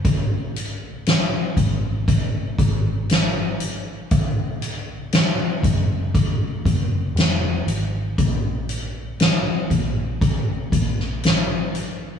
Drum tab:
HH |x-x-x-x-x-x-x-x-|x-x-x-x-x-x-x-x-|x-x-x-x-x-x-x-x-|
SD |----o-------o---|----o-------o---|----o------oo---|
BD |o-----o-o-o-----|o-----o-o-o-----|o-----o-o-o-----|